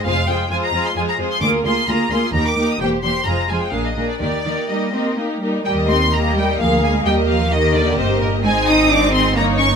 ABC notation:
X:1
M:3/4
L:1/16
Q:1/4=130
K:Eb
V:1 name="Violin section"
f2 g2 a b2 c' a b2 c' | d'2 c'2 b2 c'2 b d'2 e' | g2 c'2 b2 a g f e2 d | d4 e4 z4 |
g2 c'2 b2 g2 f2 a2 | g2 f2 e2 d2 c2 B2 | a2 e'2 d'2 c'2 b2 _d'2 |]
V:2 name="Violin section"
[Ac]2 [Ac]2 [Ac]2 [Ac]2 [Ac]2 [Ac]2 | [AB]2 [AB]2 [AB]2 [AB]2 [GB]2 [GB]2 | [Gc]2 [Gc]2 [Ac]2 [Ac]2 [AB]2 [AB]2 | [GB]2 [GB]2 [GB]2 [GB]2 [GB]2 [GB]2 |
[Be]4 [Be]4 [Bf]4 | [Be]4 [Be]8 | [Ae]8 [E_d]4 |]
V:3 name="Viola section"
[A,F]2 [A,F]2 [A,F]2 [A,F]2 [A,F]2 [A,F]2 | [B,F]2 [B,F]2 [B,F]2 [B,F]2 [B,E]2 [B,E]2 | [B,G]2 [B,G]2 [A,F]2 [A,F]2 [B,D]2 [B,D]2 | [B,E]2 [B,E]2 [B,E]2 [B,E]2 [B,E]2 [B,E]2 |
[G,G]4 [G,G]4 [B,A]4 | [B,G]4 [B,G]8 | [CE]8 [B,E]4 |]
V:4 name="Cello section" clef=bass
F,,2 F,,2 F,,2 F,,2 F,,2 F,,2 | D,,2 D,,2 D,,2 D,,2 E,,2 E,,2 | =E,,2 E,,2 F,,2 F,,2 B,,2 B,,2 | E,2 E,2 G,2 C2 B,2 G,2 |
G,2 C2 B,2 G,2 F,2 A,2 | G,2 F,2 E,2 D,2 C,2 B,,2 | A,2 E2 D2 C2 B,2 _D2 |]
V:5 name="Double bass section" clef=bass
F,,,2 z8 z2 | D,,2 z6 E,,2 z2 | =E,,,2 z2 F,,,2 z2 B,,,2 z2 | E,,2 z8 z2 |
E,,8 D,,4 | E,,8 G,,,4 | A,,,8 G,,,4 |]